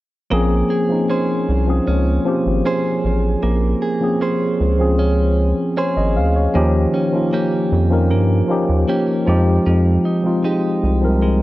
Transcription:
0.30 analog synth bass A#1, tine electric piano F3 A#3 C4 C#4 G#4, clean electric guitar A#3
0.70 clean electric guitar G#4
0.89 tine electric piano F3 A#3 C4 C#4 D#4
1.09 clean electric guitar C#4 G#4 C5
1.49 analog synth bass C2
1.67 tine electric piano F3 A#3 C4 C#4 G#4
1.87 analog synth bass C#2, clean electric guitar C#4
2.25 tine electric piano F3 A#3 C4 C#4 G4
2.46 analog synth bass G#1
2.65 clean electric guitar C#4 G#4 C5
3.04 analog synth bass A1
3.43 analog synth bass A#1, clean electric guitar A#3
3.82 clean electric guitar G#4
4.00 tine electric piano F3 A#3 C4 C#4 G#4
4.21 clean electric guitar C#4 G#4 C5
4.61 analog synth bass C#2
4.78 tine electric piano F3 A#3 C4 C#4 G#4
4.99 clean electric guitar C#4
5.77 clean electric guitar C#4 G#4 C5, tine electric piano C#5
5.97 analog synth bass G#1, tine electric piano D#5
6.16 analog synth bass D2, tine electric piano F5
6.36 tine electric piano C#5
6.54 analog synth bass D#2, clean electric guitar D#3, tine electric piano F3 A#3 C#4 D#4 G4
6.94 clean electric guitar C#4
7.12 tine electric piano F3 A#3 C#4 D#4 F4
7.33 clean electric guitar A#3 C#4 G4
7.72 analog synth bass F2
7.90 tine electric piano F3 A#3 C#4 D#4 A#4
8.11 analog synth bass G2, clean electric guitar A#3
8.48 tine electric piano F3 A#3 C#4 D#4 G4
8.69 analog synth bass D#2
8.89 clean electric guitar A#3 C#4 G4
9.26 analog synth bass F2, tine electric piano F3 G#3 C4 D#4 G4, clean electric guitar F3
9.66 analog synth bass F2, clean electric guitar F3
10.05 clean electric guitar D#4
10.24 tine electric piano F3 G#3 C4 D#4 F4
10.45 clean electric guitar G#3 D#4 G4
10.84 analog synth bass C2
11.02 tine electric piano F3 G3 C4 D#4 A#4
11.09 tine electric piano G#3
11.22 clean electric guitar G#3

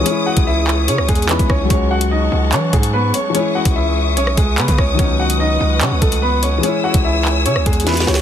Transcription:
Already playing: string section D#6
0.01 felt piano E3 G#3
0.06 felt piano C#4, grand piano C#4 C#5, string section G#4 C#5 C#6, closed hi-hat
0.11 felt piano E4
0.26 grand piano F#4 F#5
0.37 808-style bass C#2, kick, closed hi-hat
0.47 grand piano E4 E5
0.68 clap
0.88 808-style bass C#3, grand piano C#4 C#5, closed hi-hat
0.98 808-style bass C#2, cross-stick
1.09 808-style bass E2, grand piano G#3 G#4, kick, closed hi-hat
1.15 closed hi-hat
1.22 closed hi-hat
1.27 felt piano E3 G#3 C#4 D#4, grand piano B3 B4, clap, closed hi-hat
1.32 felt piano E4
1.39 808-style bass C#2, kick, closed hi-hat
1.50 808-style bass C#2, grand piano C#4 C#5, kick, cross-stick
1.65 felt piano F#3 G#3
1.70 808-style bass C#2, string section G#3 F#5 A5, grand piano C#4 C#5, felt piano C#4, kick, closed hi-hat
1.75 felt piano F#4
1.91 grand piano F#4 F#5
2.01 closed hi-hat
2.11 grand piano D#4 D#5
2.32 808-style bass C#2
2.52 808-style bass E3, grand piano C#4 C#5, clap, closed hi-hat
2.73 808-style bass G#2, grand piano G#3 G#4, kick, closed hi-hat
2.83 closed hi-hat
2.93 grand piano B3 B4
3.14 grand piano C#4 C#5, closed hi-hat
3.30 felt piano E3 G#3
3.35 felt piano C#4, grand piano C#4 C#5, string section E5 D#6, closed hi-hat
3.40 felt piano E4
3.55 grand piano F#4 F#5
3.65 808-style bass C#2, kick, closed hi-hat
3.76 grand piano E4 E5
4.17 808-style bass B1, grand piano C#4 C#5, closed hi-hat
4.27 cross-stick
4.37 808-style bass C#2, grand piano G#3 G#4, kick, closed hi-hat
4.58 808-style bass C#3, grand piano B3 B4, clap, closed hi-hat
4.68 808-style bass C#3, kick, closed hi-hat
4.78 808-style bass C#2, grand piano C#4 C#5, kick, cross-stick
4.94 felt piano D#3 F#3
4.99 808-style bass C#2, felt piano B3 C#4, grand piano C#4 C#5, string section B4 F#5, kick, closed hi-hat
5.04 felt piano D#4
5.20 grand piano F#4 F#5
5.30 closed hi-hat
5.40 grand piano D#4 D#5
5.61 808-style bass C#2
5.81 808-style bass C#3, grand piano C#4 C#5, clap, closed hi-hat
5.91 808-style bass C#2
6.02 808-style bass C#2, grand piano A3 A4, kick, closed hi-hat
6.12 closed hi-hat
6.22 grand piano B3 B4
6.43 grand piano C#4 C#5, closed hi-hat
6.58 felt piano E3 G#3
6.63 felt piano C#4, grand piano C#4 C#5, string section C#5 G#5 E6, closed hi-hat
6.68 felt piano E4
6.84 grand piano F#4 F#5
6.94 808-style bass C#2, kick, closed hi-hat
7.04 grand piano E4 E5
7.25 clap
7.46 808-style bass C#3, grand piano C#4 C#5, closed hi-hat
7.56 808-style bass C#2, cross-stick
7.66 808-style bass E2, grand piano G#3 G#4, kick, closed hi-hat
7.73 closed hi-hat
7.80 closed hi-hat
7.84 felt piano E3 G#3 C#4 D#4, grand piano B3 B4, snare, closed hi-hat
7.89 felt piano E4
7.94 snare, closed hi-hat
8.00 snare
8.07 808-style bass C#2, grand piano C#4 C#5, snare
8.14 snare

